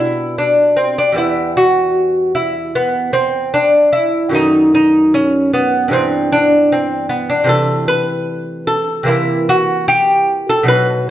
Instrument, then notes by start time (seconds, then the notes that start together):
lute
Already playing: B2 G3 B3 E4
0.38 D4
0.76 C4
0.98 D4
1.12 E2 G3 B3
1.18 E4
1.57 F#4
2.35 E4
2.75 B3
3.13 C4
3.54 D4
3.93 E4
4.29 F#2 D#3 A3
4.35 D#4
4.75 D#4
5.14 C#4
5.54 B3
5.88 G2 E3 B3
5.93 C4
6.32 D4
6.72 C4
7.09 B3
7.30 D4
7.44 C3 E3 A3
7.49 A4
7.88 B4
8.67 A4
9.03 C3 E3 A#3
9.08 E4
9.49 F#4
9.88 G4
10.49 A4
10.63 B2 F#3 D#4
10.68 B4